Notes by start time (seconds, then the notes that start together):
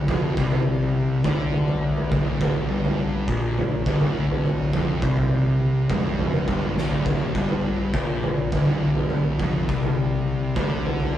0.08 F1 F2, kick, floor tom
0.37 C2 C3, kick
0.52 floor tom
1.24 D2 D3, kick, floor tom
1.53 floor tom
1.68 floor tom
1.97 floor tom
2.11 D1 D2, kick, floor tom
2.41 D1 D2, kick, floor tom
2.69 G1 G2
2.85 floor tom
3.28 A#1 A#2, kick
3.58 floor tom
3.86 D1 D2, kick, floor tom
4.01 floor tom
4.30 floor tom
4.46 floor tom
4.73 F1 F2, kick, floor tom
5.02 C2 C3, kick, floor tom
5.17 floor tom
5.90 F1 F2, kick, floor tom, mid tom
6.19 floor tom
6.33 floor tom
6.48 G1 G2, kick, mid tom
6.62 floor tom
6.77 D1 D2, snare
6.91 floor tom
7.05 D1 D2, kick, floor tom
7.35 G1 G2, kick
7.49 floor tom
7.94 A#1 A#2, kick
8.23 floor tom
8.52 D1 D2, kick, floor tom
8.66 floor tom
8.95 floor tom
9.10 floor tom
9.39 F1 F2, kick, floor tom
9.69 C2 C3, kick
9.83 floor tom
10.55 D2 D3, kick, floor tom
10.85 floor tom
11.00 floor tom